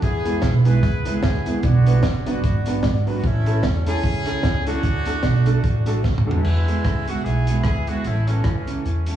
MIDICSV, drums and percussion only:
0, 0, Header, 1, 2, 480
1, 0, Start_track
1, 0, Tempo, 401070
1, 37, Time_signature, 4, 2, 24, 8
1, 10963, End_track
2, 0, Start_track
2, 0, Title_t, "Drums"
2, 26, Note_on_c, 9, 42, 78
2, 29, Note_on_c, 9, 36, 119
2, 146, Note_off_c, 9, 42, 0
2, 149, Note_off_c, 9, 36, 0
2, 303, Note_on_c, 9, 42, 87
2, 423, Note_off_c, 9, 42, 0
2, 500, Note_on_c, 9, 38, 118
2, 501, Note_on_c, 9, 42, 79
2, 509, Note_on_c, 9, 36, 106
2, 620, Note_off_c, 9, 38, 0
2, 621, Note_off_c, 9, 42, 0
2, 629, Note_off_c, 9, 36, 0
2, 779, Note_on_c, 9, 42, 87
2, 899, Note_off_c, 9, 42, 0
2, 993, Note_on_c, 9, 36, 127
2, 1001, Note_on_c, 9, 42, 76
2, 1113, Note_off_c, 9, 36, 0
2, 1120, Note_off_c, 9, 42, 0
2, 1260, Note_on_c, 9, 42, 103
2, 1380, Note_off_c, 9, 42, 0
2, 1467, Note_on_c, 9, 38, 113
2, 1475, Note_on_c, 9, 42, 71
2, 1478, Note_on_c, 9, 36, 124
2, 1586, Note_off_c, 9, 38, 0
2, 1595, Note_off_c, 9, 42, 0
2, 1598, Note_off_c, 9, 36, 0
2, 1746, Note_on_c, 9, 42, 86
2, 1866, Note_off_c, 9, 42, 0
2, 1948, Note_on_c, 9, 42, 79
2, 1955, Note_on_c, 9, 36, 120
2, 2068, Note_off_c, 9, 42, 0
2, 2075, Note_off_c, 9, 36, 0
2, 2231, Note_on_c, 9, 42, 97
2, 2351, Note_off_c, 9, 42, 0
2, 2427, Note_on_c, 9, 38, 116
2, 2428, Note_on_c, 9, 42, 78
2, 2436, Note_on_c, 9, 36, 112
2, 2547, Note_off_c, 9, 38, 0
2, 2548, Note_off_c, 9, 42, 0
2, 2555, Note_off_c, 9, 36, 0
2, 2710, Note_on_c, 9, 42, 87
2, 2829, Note_off_c, 9, 42, 0
2, 2917, Note_on_c, 9, 36, 124
2, 2917, Note_on_c, 9, 42, 82
2, 3036, Note_off_c, 9, 42, 0
2, 3037, Note_off_c, 9, 36, 0
2, 3179, Note_on_c, 9, 42, 113
2, 3299, Note_off_c, 9, 42, 0
2, 3384, Note_on_c, 9, 38, 111
2, 3392, Note_on_c, 9, 42, 70
2, 3398, Note_on_c, 9, 36, 114
2, 3504, Note_off_c, 9, 38, 0
2, 3512, Note_off_c, 9, 42, 0
2, 3518, Note_off_c, 9, 36, 0
2, 3671, Note_on_c, 9, 46, 53
2, 3791, Note_off_c, 9, 46, 0
2, 3873, Note_on_c, 9, 36, 119
2, 3874, Note_on_c, 9, 42, 81
2, 3993, Note_off_c, 9, 36, 0
2, 3994, Note_off_c, 9, 42, 0
2, 4143, Note_on_c, 9, 42, 85
2, 4263, Note_off_c, 9, 42, 0
2, 4345, Note_on_c, 9, 38, 115
2, 4346, Note_on_c, 9, 42, 78
2, 4353, Note_on_c, 9, 36, 104
2, 4465, Note_off_c, 9, 38, 0
2, 4466, Note_off_c, 9, 42, 0
2, 4472, Note_off_c, 9, 36, 0
2, 4624, Note_on_c, 9, 42, 93
2, 4744, Note_off_c, 9, 42, 0
2, 4831, Note_on_c, 9, 36, 116
2, 4833, Note_on_c, 9, 42, 78
2, 4951, Note_off_c, 9, 36, 0
2, 4953, Note_off_c, 9, 42, 0
2, 5092, Note_on_c, 9, 42, 110
2, 5212, Note_off_c, 9, 42, 0
2, 5303, Note_on_c, 9, 38, 110
2, 5311, Note_on_c, 9, 36, 122
2, 5311, Note_on_c, 9, 42, 68
2, 5422, Note_off_c, 9, 38, 0
2, 5431, Note_off_c, 9, 36, 0
2, 5431, Note_off_c, 9, 42, 0
2, 5582, Note_on_c, 9, 42, 89
2, 5702, Note_off_c, 9, 42, 0
2, 5781, Note_on_c, 9, 42, 85
2, 5784, Note_on_c, 9, 36, 114
2, 5901, Note_off_c, 9, 42, 0
2, 5904, Note_off_c, 9, 36, 0
2, 6048, Note_on_c, 9, 42, 97
2, 6168, Note_off_c, 9, 42, 0
2, 6256, Note_on_c, 9, 38, 114
2, 6258, Note_on_c, 9, 42, 78
2, 6265, Note_on_c, 9, 36, 101
2, 6376, Note_off_c, 9, 38, 0
2, 6377, Note_off_c, 9, 42, 0
2, 6384, Note_off_c, 9, 36, 0
2, 6532, Note_on_c, 9, 42, 90
2, 6652, Note_off_c, 9, 42, 0
2, 6748, Note_on_c, 9, 36, 113
2, 6751, Note_on_c, 9, 42, 83
2, 6868, Note_off_c, 9, 36, 0
2, 6870, Note_off_c, 9, 42, 0
2, 7014, Note_on_c, 9, 42, 106
2, 7134, Note_off_c, 9, 42, 0
2, 7228, Note_on_c, 9, 38, 57
2, 7232, Note_on_c, 9, 36, 113
2, 7347, Note_off_c, 9, 38, 0
2, 7352, Note_off_c, 9, 36, 0
2, 7395, Note_on_c, 9, 45, 75
2, 7515, Note_off_c, 9, 45, 0
2, 7552, Note_on_c, 9, 43, 110
2, 7672, Note_off_c, 9, 43, 0
2, 7712, Note_on_c, 9, 49, 95
2, 7832, Note_off_c, 9, 49, 0
2, 7995, Note_on_c, 9, 42, 81
2, 8115, Note_off_c, 9, 42, 0
2, 8193, Note_on_c, 9, 36, 105
2, 8194, Note_on_c, 9, 37, 110
2, 8195, Note_on_c, 9, 42, 76
2, 8312, Note_off_c, 9, 36, 0
2, 8313, Note_off_c, 9, 37, 0
2, 8315, Note_off_c, 9, 42, 0
2, 8467, Note_on_c, 9, 42, 76
2, 8586, Note_off_c, 9, 42, 0
2, 8685, Note_on_c, 9, 42, 76
2, 8805, Note_off_c, 9, 42, 0
2, 8939, Note_on_c, 9, 42, 105
2, 9059, Note_off_c, 9, 42, 0
2, 9138, Note_on_c, 9, 37, 104
2, 9147, Note_on_c, 9, 42, 72
2, 9152, Note_on_c, 9, 36, 110
2, 9258, Note_off_c, 9, 37, 0
2, 9266, Note_off_c, 9, 42, 0
2, 9271, Note_off_c, 9, 36, 0
2, 9420, Note_on_c, 9, 42, 84
2, 9540, Note_off_c, 9, 42, 0
2, 9625, Note_on_c, 9, 42, 83
2, 9745, Note_off_c, 9, 42, 0
2, 9901, Note_on_c, 9, 42, 88
2, 10020, Note_off_c, 9, 42, 0
2, 10101, Note_on_c, 9, 37, 108
2, 10102, Note_on_c, 9, 42, 75
2, 10109, Note_on_c, 9, 36, 111
2, 10220, Note_off_c, 9, 37, 0
2, 10221, Note_off_c, 9, 42, 0
2, 10229, Note_off_c, 9, 36, 0
2, 10380, Note_on_c, 9, 42, 79
2, 10500, Note_off_c, 9, 42, 0
2, 10598, Note_on_c, 9, 42, 74
2, 10717, Note_off_c, 9, 42, 0
2, 10847, Note_on_c, 9, 42, 103
2, 10963, Note_off_c, 9, 42, 0
2, 10963, End_track
0, 0, End_of_file